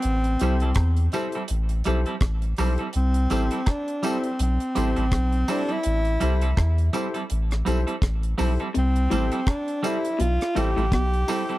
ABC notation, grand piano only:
X:1
M:4/4
L:1/16
Q:"Swing 16ths" 1/4=83
K:Am
V:1 name="Grand piano"
z2 [EGAc] z3 [EGAc] z3 [EGAc] [Ac] z2 [EGAc] z | z2 [EGAc] z3 [EGAc] z3 [EGAc] [Ac] z2 [EGAc] z | z2 [EGAc] z3 [EGAc] z3 [EGAc] [Ac] z2 [EGAc] z | z2 [EGAc] z3 [EGAc] z3 [EGAc] [Ac] z2 [EGAc] z |]